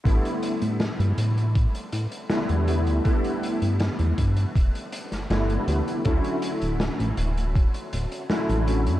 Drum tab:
HH |xxxxxxxxxxxxxxxx|xxxxxxxxxxxxxxxx|xxxxxxxxxxxxxxxx|
SD |----o-------o---|----o------oo---|----o-------o---|
BD |o-------o-------|o-----o-o-------|o-------o-------|